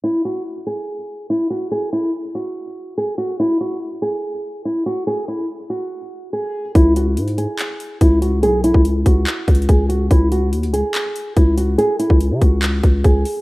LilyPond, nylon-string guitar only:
\new Staff \with { instrumentName = "Nylon-string guitar" } { \time 4/4 \key cis \minor \tempo 4 = 143 e'8 fis'8 r8 gis'4. e'8 fis'8 | gis'8 e'8 r8 fis'4. gis'8 fis'8 | e'8 fis'8 r8 gis'4. e'8 fis'8 | gis'8 e'8 r8 fis'4. gis'4 |
e'8 fis'8 r8 gis'4. e'8 fis'8 | gis'8 e'8 r8 fis'4. gis'8 fis'8 | e'8 fis'8 r8 gis'4. e'8 fis'8 | gis'8 e'8 r8 fis'4. gis'4 | }